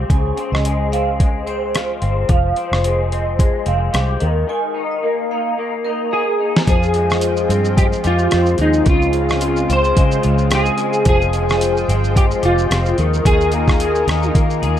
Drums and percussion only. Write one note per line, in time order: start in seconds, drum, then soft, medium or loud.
0.10 kick loud
0.10 closed hi-hat medium
0.37 closed hi-hat soft
0.55 cross-stick medium
0.65 closed hi-hat medium
0.93 closed hi-hat medium
1.20 kick medium
1.20 closed hi-hat medium
1.47 closed hi-hat soft
1.75 cross-stick medium
1.75 closed hi-hat medium
2.02 closed hi-hat soft
2.29 kick loud
2.29 closed hi-hat medium
2.56 closed hi-hat soft
2.73 cross-stick medium
2.84 closed hi-hat medium
3.12 closed hi-hat soft
3.39 kick medium
3.39 closed hi-hat medium
3.66 closed hi-hat soft
3.94 cross-stick medium
3.94 closed hi-hat medium
4.20 closed hi-hat soft
6.57 snare medium
6.67 kick loud
6.67 closed hi-hat medium
6.67 shaker medium
6.83 shaker soft
6.94 closed hi-hat soft
6.94 shaker soft
7.10 cross-stick medium
7.10 shaker soft
7.21 closed hi-hat medium
7.21 shaker medium
7.37 shaker medium
7.50 closed hi-hat medium
7.50 shaker medium
7.65 shaker soft
7.77 kick medium
7.77 closed hi-hat medium
7.77 shaker medium
7.92 shaker medium
8.04 closed hi-hat soft
8.04 shaker soft
8.19 shaker soft
8.31 cross-stick medium
8.31 closed hi-hat medium
8.31 shaker medium
8.46 shaker medium
8.58 closed hi-hat soft
8.58 shaker soft
8.73 shaker medium
8.86 kick loud
8.86 closed hi-hat medium
8.86 shaker medium
9.02 shaker soft
9.13 closed hi-hat soft
9.13 shaker soft
9.29 cross-stick medium
9.29 shaker soft
9.41 closed hi-hat medium
9.41 shaker medium
9.56 shaker soft
9.70 closed hi-hat soft
9.70 shaker medium
9.84 shaker soft
9.97 kick medium
9.97 closed hi-hat medium
9.97 shaker medium
10.11 shaker medium
10.23 closed hi-hat soft
10.23 shaker soft
10.38 shaker soft
10.51 cross-stick medium
10.51 closed hi-hat medium
10.51 shaker medium
10.66 shaker medium
10.78 closed hi-hat soft
10.78 shaker soft
10.93 shaker soft
11.05 kick loud
11.05 closed hi-hat medium
11.05 shaker medium
11.21 shaker soft
11.33 closed hi-hat soft
11.33 shaker medium
11.49 cross-stick medium
11.49 shaker soft
11.61 closed hi-hat medium
11.61 shaker medium
11.77 shaker medium
11.89 closed hi-hat medium
11.89 shaker medium
12.04 shaker soft
12.16 kick medium
12.16 closed hi-hat medium
12.16 shaker medium
12.31 shaker medium
12.43 closed hi-hat soft
12.43 shaker soft
12.58 shaker soft
12.71 cross-stick medium
12.71 closed hi-hat medium
12.71 shaker medium
12.86 shaker medium
12.98 closed hi-hat soft
12.98 shaker soft
13.14 shaker medium
13.25 kick loud
13.25 closed hi-hat medium
13.25 shaker medium
13.41 shaker medium
13.52 closed hi-hat soft
13.52 shaker soft
13.68 kick medium
13.68 cross-stick medium
13.68 shaker soft
13.80 closed hi-hat medium
13.80 shaker medium
13.95 shaker soft
14.08 cross-stick medium
14.08 closed hi-hat soft
14.08 shaker medium
14.23 shaker soft
14.35 kick medium
14.35 closed hi-hat medium
14.35 shaker medium
14.50 shaker medium
14.63 closed hi-hat soft
14.63 shaker soft